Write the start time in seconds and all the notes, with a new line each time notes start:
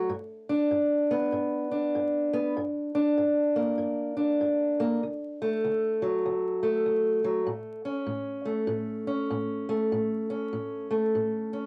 Already playing: A3
0.10 G2
0.49 D4
0.71 G2
1.11 B3
1.32 G2
1.71 D4
1.95 G2
2.33 B3
2.57 G2
2.95 D4
3.18 G2
3.56 A#3
3.78 G2
4.17 D4
4.41 G2
4.80 A#3
5.03 D2
5.42 A3
5.64 D2
6.02 F#3
6.26 D2
6.63 A3
6.86 D2
7.24 F#3
7.47 A2
7.85 C#4
8.07 A2
8.45 A3
8.67 A2
9.07 C#4
9.30 A2
9.69 A3
9.92 A2
10.30 C#4
10.53 A2
10.91 A3
11.15 A2
11.53 C#4